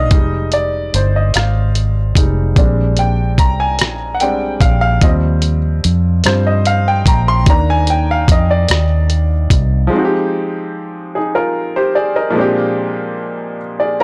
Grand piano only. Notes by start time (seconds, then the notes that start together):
Already playing: D#3 A#3 D4 D5 D#5 F5
0.11 G3 G#3 D#4
0.54 D5
0.96 C5
1.16 D#5
1.36 F5
2.17 G3 G#3 D#4
2.57 G3 G#3 C4 D4
2.99 G5
3.39 A#5
3.60 G#5
4.14 F#5
4.21 G3 G#3 C4 D4 G5
4.61 F5
4.81 F5
5.03 F3 G3 C4 D#5
6.26 F3 G3 C4 C5
6.47 D#5
6.67 F5
6.88 G5
7.07 A#5
7.28 C6
7.48 D#3 A#3 D4 A#5
7.70 G#5
7.90 G5
8.11 F5
8.32 D#5
8.51 D5
9.87 F3 G#3
9.93 C4 D#4
9.98 F#4
10.05 G4
11.15 D#4 G#4
11.35 F4 A#4
11.76 G4 C5
11.95 G#4 D5
12.16 A#4 D#5
12.30 A#2 F3
12.35 G#3 C4
12.39 D4 G4
13.80 G#4 D5
14.00 A#5